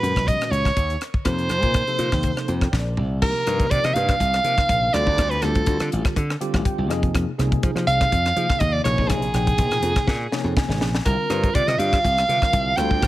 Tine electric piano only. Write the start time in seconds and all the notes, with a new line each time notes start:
Already playing: A#2 D#3 G#3 C#4 F#4
1.25 C3 F3 A#3 D#4 G4
1.63 C3 F3 A#3 D#4 F4
1.88 C3 F3 A#3 D#4 A4
2.48 G5
2.72 D5
3.22 C3 F3 A#3 D#4 G4
3.46 C3 F3 A#3 D#4 G4
4.44 C3 F3 A#3 D#4 A#4
4.94 D3 G3 C4 F4 A4
5.43 D3 G3 C4 F4 G4
6.41 D3 G3 C4 F4 G4
6.66 G5
6.89 C3 F3 A#3 D#4 G#4 D#5
7.38 C3 F3 A#3 D#4 G#4
8.36 C3 F3 A#3 D#4 G#4
8.85 C3 F3 A#3 D#4 G#4
9.34 C3 F3 A#3 D#4 G5
10.32 C3 F3 A#3 D#4 G#4 C#5
10.57 G#5
11.06 D3 G3 C4 F4 A#4
11.31 D3 G3 C4 F4 C5
12.29 D3 G3 C4 F4 A#4
12.78 D3 G3 C4 F4 A4